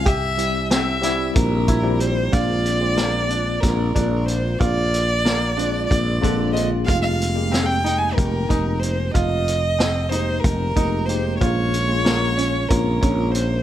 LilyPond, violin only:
\new Staff \with { instrumentName = "Violin" } { \time 7/8 \key bes \dorian \tempo 4 = 92 e''4 e''4 bes'4 c''8 | d''2 bes'4 c''8 | d''2 d''4 ees''8 | f''16 f''4 g''8 aes''16 bes'4 c''8 |
ees''4. c''8 bes'4 c''8 | des''2 bes'4 c''8 | }